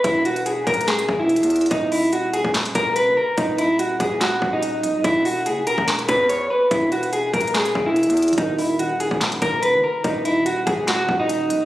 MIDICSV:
0, 0, Header, 1, 5, 480
1, 0, Start_track
1, 0, Tempo, 416667
1, 51, Time_signature, 4, 2, 24, 8
1, 13421, End_track
2, 0, Start_track
2, 0, Title_t, "Clean electric guitar"
2, 0, Program_c, 0, 27
2, 51, Note_on_c, 0, 64, 76
2, 250, Note_off_c, 0, 64, 0
2, 293, Note_on_c, 0, 66, 77
2, 492, Note_off_c, 0, 66, 0
2, 531, Note_on_c, 0, 68, 76
2, 730, Note_off_c, 0, 68, 0
2, 771, Note_on_c, 0, 70, 81
2, 970, Note_off_c, 0, 70, 0
2, 1012, Note_on_c, 0, 68, 90
2, 1357, Note_off_c, 0, 68, 0
2, 1377, Note_on_c, 0, 64, 75
2, 1934, Note_off_c, 0, 64, 0
2, 1971, Note_on_c, 0, 63, 91
2, 2170, Note_off_c, 0, 63, 0
2, 2212, Note_on_c, 0, 64, 83
2, 2411, Note_off_c, 0, 64, 0
2, 2452, Note_on_c, 0, 66, 78
2, 2651, Note_off_c, 0, 66, 0
2, 2691, Note_on_c, 0, 68, 80
2, 2890, Note_off_c, 0, 68, 0
2, 3171, Note_on_c, 0, 70, 103
2, 3370, Note_off_c, 0, 70, 0
2, 3409, Note_on_c, 0, 71, 80
2, 3609, Note_off_c, 0, 71, 0
2, 3652, Note_on_c, 0, 70, 77
2, 3851, Note_off_c, 0, 70, 0
2, 3888, Note_on_c, 0, 63, 74
2, 4089, Note_off_c, 0, 63, 0
2, 4131, Note_on_c, 0, 64, 93
2, 4330, Note_off_c, 0, 64, 0
2, 4371, Note_on_c, 0, 66, 76
2, 4570, Note_off_c, 0, 66, 0
2, 4609, Note_on_c, 0, 68, 81
2, 4809, Note_off_c, 0, 68, 0
2, 4852, Note_on_c, 0, 66, 97
2, 5196, Note_off_c, 0, 66, 0
2, 5219, Note_on_c, 0, 63, 74
2, 5776, Note_off_c, 0, 63, 0
2, 5813, Note_on_c, 0, 64, 94
2, 6011, Note_off_c, 0, 64, 0
2, 6051, Note_on_c, 0, 66, 86
2, 6250, Note_off_c, 0, 66, 0
2, 6294, Note_on_c, 0, 68, 81
2, 6492, Note_off_c, 0, 68, 0
2, 6532, Note_on_c, 0, 70, 83
2, 6731, Note_off_c, 0, 70, 0
2, 7011, Note_on_c, 0, 71, 95
2, 7210, Note_off_c, 0, 71, 0
2, 7250, Note_on_c, 0, 73, 83
2, 7450, Note_off_c, 0, 73, 0
2, 7492, Note_on_c, 0, 71, 78
2, 7691, Note_off_c, 0, 71, 0
2, 7731, Note_on_c, 0, 64, 76
2, 7930, Note_off_c, 0, 64, 0
2, 7975, Note_on_c, 0, 66, 77
2, 8172, Note_off_c, 0, 66, 0
2, 8212, Note_on_c, 0, 68, 75
2, 8411, Note_off_c, 0, 68, 0
2, 8453, Note_on_c, 0, 70, 80
2, 8651, Note_off_c, 0, 70, 0
2, 8692, Note_on_c, 0, 68, 96
2, 9037, Note_off_c, 0, 68, 0
2, 9057, Note_on_c, 0, 64, 73
2, 9614, Note_off_c, 0, 64, 0
2, 9651, Note_on_c, 0, 63, 94
2, 9850, Note_off_c, 0, 63, 0
2, 9890, Note_on_c, 0, 64, 78
2, 10090, Note_off_c, 0, 64, 0
2, 10133, Note_on_c, 0, 66, 79
2, 10331, Note_off_c, 0, 66, 0
2, 10370, Note_on_c, 0, 68, 81
2, 10570, Note_off_c, 0, 68, 0
2, 10850, Note_on_c, 0, 70, 103
2, 11050, Note_off_c, 0, 70, 0
2, 11088, Note_on_c, 0, 71, 79
2, 11289, Note_off_c, 0, 71, 0
2, 11331, Note_on_c, 0, 70, 77
2, 11530, Note_off_c, 0, 70, 0
2, 11569, Note_on_c, 0, 63, 75
2, 11769, Note_off_c, 0, 63, 0
2, 11811, Note_on_c, 0, 64, 89
2, 12010, Note_off_c, 0, 64, 0
2, 12048, Note_on_c, 0, 66, 79
2, 12249, Note_off_c, 0, 66, 0
2, 12287, Note_on_c, 0, 68, 81
2, 12488, Note_off_c, 0, 68, 0
2, 12530, Note_on_c, 0, 66, 97
2, 12876, Note_off_c, 0, 66, 0
2, 12897, Note_on_c, 0, 63, 74
2, 13421, Note_off_c, 0, 63, 0
2, 13421, End_track
3, 0, Start_track
3, 0, Title_t, "Tine electric piano"
3, 0, Program_c, 1, 4
3, 9589, Note_on_c, 1, 51, 66
3, 9630, Note_on_c, 1, 63, 67
3, 9672, Note_on_c, 1, 66, 64
3, 9713, Note_on_c, 1, 70, 76
3, 9891, Control_c, 1, 64, 127
3, 13414, Note_off_c, 1, 51, 0
3, 13421, Note_off_c, 1, 63, 0
3, 13421, Note_off_c, 1, 66, 0
3, 13421, Note_off_c, 1, 70, 0
3, 13421, End_track
4, 0, Start_track
4, 0, Title_t, "808-style bass"
4, 0, Program_c, 2, 38
4, 50, Note_on_c, 2, 28, 114
4, 741, Note_off_c, 2, 28, 0
4, 770, Note_on_c, 2, 27, 103
4, 1231, Note_off_c, 2, 27, 0
4, 1251, Note_on_c, 2, 28, 103
4, 1617, Note_on_c, 2, 40, 98
4, 1634, Note_off_c, 2, 28, 0
4, 1952, Note_off_c, 2, 40, 0
4, 1970, Note_on_c, 2, 27, 111
4, 2784, Note_off_c, 2, 27, 0
4, 2817, Note_on_c, 2, 27, 100
4, 3156, Note_off_c, 2, 27, 0
4, 3171, Note_on_c, 2, 27, 110
4, 3538, Note_on_c, 2, 30, 95
4, 3555, Note_off_c, 2, 27, 0
4, 3645, Note_off_c, 2, 30, 0
4, 3890, Note_on_c, 2, 27, 112
4, 4581, Note_off_c, 2, 27, 0
4, 4609, Note_on_c, 2, 27, 104
4, 5070, Note_off_c, 2, 27, 0
4, 5090, Note_on_c, 2, 27, 106
4, 5569, Note_on_c, 2, 25, 100
4, 5586, Note_off_c, 2, 27, 0
4, 5696, Note_on_c, 2, 27, 100
4, 5713, Note_off_c, 2, 25, 0
4, 5804, Note_off_c, 2, 27, 0
4, 5810, Note_on_c, 2, 28, 109
4, 6290, Note_on_c, 2, 30, 96
4, 6307, Note_off_c, 2, 28, 0
4, 6473, Note_on_c, 2, 28, 100
4, 6491, Note_off_c, 2, 30, 0
4, 6648, Note_off_c, 2, 28, 0
4, 6656, Note_on_c, 2, 28, 103
4, 6996, Note_off_c, 2, 28, 0
4, 7012, Note_on_c, 2, 40, 104
4, 7472, Note_off_c, 2, 40, 0
4, 7731, Note_on_c, 2, 28, 113
4, 8422, Note_off_c, 2, 28, 0
4, 8450, Note_on_c, 2, 27, 106
4, 8911, Note_off_c, 2, 27, 0
4, 8932, Note_on_c, 2, 28, 105
4, 9297, Note_on_c, 2, 40, 100
4, 9315, Note_off_c, 2, 28, 0
4, 9633, Note_off_c, 2, 40, 0
4, 9650, Note_on_c, 2, 27, 115
4, 10464, Note_off_c, 2, 27, 0
4, 10497, Note_on_c, 2, 27, 102
4, 10836, Note_off_c, 2, 27, 0
4, 10851, Note_on_c, 2, 27, 108
4, 11216, Note_on_c, 2, 30, 100
4, 11233, Note_off_c, 2, 27, 0
4, 11324, Note_off_c, 2, 30, 0
4, 11571, Note_on_c, 2, 27, 115
4, 12262, Note_off_c, 2, 27, 0
4, 12289, Note_on_c, 2, 27, 106
4, 12750, Note_off_c, 2, 27, 0
4, 12771, Note_on_c, 2, 27, 107
4, 13250, Note_on_c, 2, 25, 101
4, 13268, Note_off_c, 2, 27, 0
4, 13378, Note_on_c, 2, 27, 98
4, 13395, Note_off_c, 2, 25, 0
4, 13421, Note_off_c, 2, 27, 0
4, 13421, End_track
5, 0, Start_track
5, 0, Title_t, "Drums"
5, 49, Note_on_c, 9, 36, 112
5, 49, Note_on_c, 9, 42, 92
5, 164, Note_off_c, 9, 42, 0
5, 165, Note_off_c, 9, 36, 0
5, 290, Note_on_c, 9, 42, 55
5, 405, Note_off_c, 9, 42, 0
5, 417, Note_on_c, 9, 42, 55
5, 530, Note_off_c, 9, 42, 0
5, 530, Note_on_c, 9, 42, 89
5, 645, Note_off_c, 9, 42, 0
5, 769, Note_on_c, 9, 36, 106
5, 770, Note_on_c, 9, 42, 67
5, 850, Note_off_c, 9, 42, 0
5, 850, Note_on_c, 9, 42, 65
5, 884, Note_off_c, 9, 36, 0
5, 929, Note_off_c, 9, 42, 0
5, 929, Note_on_c, 9, 42, 68
5, 1010, Note_off_c, 9, 42, 0
5, 1010, Note_on_c, 9, 38, 115
5, 1010, Note_on_c, 9, 42, 49
5, 1022, Note_on_c, 9, 39, 92
5, 1125, Note_off_c, 9, 38, 0
5, 1125, Note_off_c, 9, 42, 0
5, 1137, Note_off_c, 9, 39, 0
5, 1137, Note_on_c, 9, 42, 81
5, 1251, Note_on_c, 9, 36, 94
5, 1252, Note_off_c, 9, 42, 0
5, 1366, Note_off_c, 9, 36, 0
5, 1490, Note_on_c, 9, 42, 45
5, 1571, Note_off_c, 9, 42, 0
5, 1571, Note_on_c, 9, 42, 60
5, 1650, Note_off_c, 9, 42, 0
5, 1650, Note_on_c, 9, 42, 73
5, 1730, Note_off_c, 9, 42, 0
5, 1730, Note_on_c, 9, 42, 63
5, 1794, Note_off_c, 9, 42, 0
5, 1794, Note_on_c, 9, 42, 62
5, 1856, Note_off_c, 9, 42, 0
5, 1856, Note_on_c, 9, 42, 59
5, 1913, Note_off_c, 9, 42, 0
5, 1913, Note_on_c, 9, 42, 58
5, 1969, Note_off_c, 9, 42, 0
5, 1969, Note_on_c, 9, 42, 87
5, 1970, Note_on_c, 9, 36, 108
5, 2084, Note_off_c, 9, 42, 0
5, 2085, Note_off_c, 9, 36, 0
5, 2210, Note_on_c, 9, 46, 69
5, 2325, Note_off_c, 9, 46, 0
5, 2449, Note_on_c, 9, 42, 84
5, 2565, Note_off_c, 9, 42, 0
5, 2690, Note_on_c, 9, 42, 77
5, 2805, Note_off_c, 9, 42, 0
5, 2817, Note_on_c, 9, 36, 94
5, 2930, Note_on_c, 9, 38, 116
5, 2930, Note_on_c, 9, 42, 70
5, 2932, Note_off_c, 9, 36, 0
5, 2942, Note_on_c, 9, 39, 90
5, 3045, Note_off_c, 9, 38, 0
5, 3045, Note_off_c, 9, 42, 0
5, 3057, Note_off_c, 9, 39, 0
5, 3057, Note_on_c, 9, 42, 65
5, 3169, Note_off_c, 9, 42, 0
5, 3169, Note_on_c, 9, 42, 91
5, 3170, Note_on_c, 9, 36, 91
5, 3284, Note_off_c, 9, 42, 0
5, 3286, Note_off_c, 9, 36, 0
5, 3409, Note_on_c, 9, 42, 76
5, 3524, Note_off_c, 9, 42, 0
5, 3889, Note_on_c, 9, 42, 88
5, 3890, Note_on_c, 9, 36, 107
5, 4004, Note_off_c, 9, 42, 0
5, 4005, Note_off_c, 9, 36, 0
5, 4129, Note_on_c, 9, 42, 64
5, 4244, Note_off_c, 9, 42, 0
5, 4369, Note_on_c, 9, 42, 86
5, 4484, Note_off_c, 9, 42, 0
5, 4608, Note_on_c, 9, 42, 78
5, 4609, Note_on_c, 9, 36, 102
5, 4724, Note_off_c, 9, 36, 0
5, 4724, Note_off_c, 9, 42, 0
5, 4849, Note_on_c, 9, 42, 84
5, 4850, Note_on_c, 9, 38, 114
5, 4862, Note_on_c, 9, 39, 90
5, 4964, Note_off_c, 9, 42, 0
5, 4965, Note_off_c, 9, 38, 0
5, 4977, Note_off_c, 9, 39, 0
5, 5090, Note_on_c, 9, 36, 93
5, 5205, Note_off_c, 9, 36, 0
5, 5328, Note_on_c, 9, 42, 71
5, 5444, Note_off_c, 9, 42, 0
5, 5570, Note_on_c, 9, 42, 75
5, 5685, Note_off_c, 9, 42, 0
5, 5810, Note_on_c, 9, 36, 109
5, 5810, Note_on_c, 9, 42, 91
5, 5925, Note_off_c, 9, 36, 0
5, 5925, Note_off_c, 9, 42, 0
5, 6050, Note_on_c, 9, 46, 71
5, 6165, Note_off_c, 9, 46, 0
5, 6290, Note_on_c, 9, 42, 89
5, 6406, Note_off_c, 9, 42, 0
5, 6530, Note_on_c, 9, 42, 77
5, 6645, Note_off_c, 9, 42, 0
5, 6657, Note_on_c, 9, 36, 90
5, 6770, Note_on_c, 9, 38, 115
5, 6770, Note_on_c, 9, 42, 69
5, 6772, Note_off_c, 9, 36, 0
5, 6783, Note_on_c, 9, 39, 94
5, 6885, Note_off_c, 9, 42, 0
5, 6886, Note_off_c, 9, 38, 0
5, 6897, Note_on_c, 9, 42, 68
5, 6898, Note_off_c, 9, 39, 0
5, 7010, Note_off_c, 9, 42, 0
5, 7010, Note_on_c, 9, 42, 94
5, 7011, Note_on_c, 9, 36, 92
5, 7126, Note_off_c, 9, 36, 0
5, 7126, Note_off_c, 9, 42, 0
5, 7251, Note_on_c, 9, 42, 74
5, 7366, Note_off_c, 9, 42, 0
5, 7731, Note_on_c, 9, 36, 109
5, 7731, Note_on_c, 9, 42, 90
5, 7846, Note_off_c, 9, 36, 0
5, 7846, Note_off_c, 9, 42, 0
5, 7970, Note_on_c, 9, 42, 54
5, 8086, Note_off_c, 9, 42, 0
5, 8097, Note_on_c, 9, 42, 55
5, 8211, Note_off_c, 9, 42, 0
5, 8211, Note_on_c, 9, 42, 87
5, 8326, Note_off_c, 9, 42, 0
5, 8450, Note_on_c, 9, 36, 101
5, 8451, Note_on_c, 9, 42, 67
5, 8532, Note_off_c, 9, 42, 0
5, 8532, Note_on_c, 9, 42, 66
5, 8565, Note_off_c, 9, 36, 0
5, 8611, Note_off_c, 9, 42, 0
5, 8611, Note_on_c, 9, 42, 67
5, 8691, Note_off_c, 9, 42, 0
5, 8691, Note_on_c, 9, 42, 49
5, 8692, Note_on_c, 9, 38, 115
5, 8704, Note_on_c, 9, 39, 92
5, 8806, Note_off_c, 9, 42, 0
5, 8807, Note_off_c, 9, 38, 0
5, 8818, Note_on_c, 9, 42, 79
5, 8819, Note_off_c, 9, 39, 0
5, 8931, Note_on_c, 9, 36, 93
5, 8933, Note_off_c, 9, 42, 0
5, 9047, Note_off_c, 9, 36, 0
5, 9171, Note_on_c, 9, 42, 45
5, 9251, Note_off_c, 9, 42, 0
5, 9251, Note_on_c, 9, 42, 61
5, 9330, Note_off_c, 9, 42, 0
5, 9330, Note_on_c, 9, 42, 74
5, 9411, Note_off_c, 9, 42, 0
5, 9411, Note_on_c, 9, 42, 61
5, 9475, Note_off_c, 9, 42, 0
5, 9475, Note_on_c, 9, 42, 62
5, 9538, Note_off_c, 9, 42, 0
5, 9538, Note_on_c, 9, 42, 60
5, 9594, Note_off_c, 9, 42, 0
5, 9594, Note_on_c, 9, 42, 61
5, 9651, Note_off_c, 9, 42, 0
5, 9651, Note_on_c, 9, 36, 113
5, 9651, Note_on_c, 9, 42, 90
5, 9766, Note_off_c, 9, 36, 0
5, 9766, Note_off_c, 9, 42, 0
5, 9890, Note_on_c, 9, 46, 68
5, 10006, Note_off_c, 9, 46, 0
5, 10130, Note_on_c, 9, 42, 86
5, 10245, Note_off_c, 9, 42, 0
5, 10370, Note_on_c, 9, 42, 81
5, 10485, Note_off_c, 9, 42, 0
5, 10497, Note_on_c, 9, 36, 92
5, 10609, Note_on_c, 9, 38, 110
5, 10609, Note_on_c, 9, 42, 69
5, 10612, Note_off_c, 9, 36, 0
5, 10621, Note_on_c, 9, 39, 92
5, 10724, Note_off_c, 9, 42, 0
5, 10725, Note_off_c, 9, 38, 0
5, 10736, Note_on_c, 9, 42, 67
5, 10737, Note_off_c, 9, 39, 0
5, 10850, Note_off_c, 9, 42, 0
5, 10850, Note_on_c, 9, 42, 97
5, 10851, Note_on_c, 9, 36, 96
5, 10965, Note_off_c, 9, 42, 0
5, 10966, Note_off_c, 9, 36, 0
5, 11089, Note_on_c, 9, 42, 74
5, 11205, Note_off_c, 9, 42, 0
5, 11570, Note_on_c, 9, 36, 110
5, 11570, Note_on_c, 9, 42, 88
5, 11685, Note_off_c, 9, 42, 0
5, 11686, Note_off_c, 9, 36, 0
5, 11810, Note_on_c, 9, 42, 67
5, 11925, Note_off_c, 9, 42, 0
5, 12050, Note_on_c, 9, 42, 89
5, 12165, Note_off_c, 9, 42, 0
5, 12289, Note_on_c, 9, 42, 78
5, 12290, Note_on_c, 9, 36, 102
5, 12405, Note_off_c, 9, 36, 0
5, 12405, Note_off_c, 9, 42, 0
5, 12530, Note_on_c, 9, 38, 114
5, 12530, Note_on_c, 9, 42, 79
5, 12543, Note_on_c, 9, 39, 91
5, 12645, Note_off_c, 9, 42, 0
5, 12646, Note_off_c, 9, 38, 0
5, 12658, Note_off_c, 9, 39, 0
5, 12771, Note_on_c, 9, 36, 92
5, 12886, Note_off_c, 9, 36, 0
5, 13011, Note_on_c, 9, 42, 74
5, 13126, Note_off_c, 9, 42, 0
5, 13250, Note_on_c, 9, 42, 70
5, 13365, Note_off_c, 9, 42, 0
5, 13421, End_track
0, 0, End_of_file